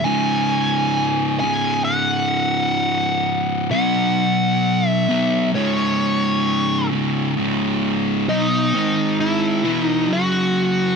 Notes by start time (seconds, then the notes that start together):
0.04 C#2 G#2 C#3 G#5
1.40 G#2 C#3 G#5
1.44 C#2
1.84 F#5
3.71 B2 F#3 B3 F#5
4.88 E5
5.09 B2 F#3 B3
5.53 C#2 G#2 C#3 C#5
6.91 C#2 G#2 C#3
7.37 C#2 G#2 C#3
8.28 B2 F#3 B3 D#4
8.74 G#2 D#3 G#3
9.20 E4
9.65 E2 B2 E3
9.83 D#4
10.09 F#2 C#3 F#3 F#4